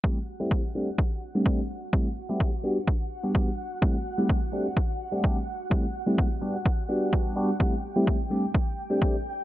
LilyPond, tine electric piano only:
\new Staff \with { instrumentName = "Tine electric piano" } { \time 4/4 \key a \dorian \tempo 4 = 127 <g a c' e' g'>16 r8 <g a c' e' g'>8 r16 <g a c' d' g'>16 r4 <g a c' d' g'>16 <g a c' d' g'>16 r8. | <g a c' e' g'>16 r8 <g a c' e' g'>8 r16 <g b d' fis' g'>16 r4 <g b d' fis' g'>16 <b fis' g'>16 r8. | <g a c' e' g'>16 r8 <g a c' e' g'>8 r16 <g a c' d' g'>16 r4 <g a c' d' g'>16 <g a c' d' g'>16 r8. | <g a c' e' g'>16 r8 <g a c' e' g'>8 r16 <g b d' fis' g'>16 r8. <g b d' fis' g'>8 <g b fis' g'>8 <g b d' fis' g'>16 r16 |
<g a c' e' g'>16 r8 <g a c' e' g'>8 r16 <g a c' d' g'>16 r4 <g a c' d' g'>16 <g a c' d' g'>16 r8. | }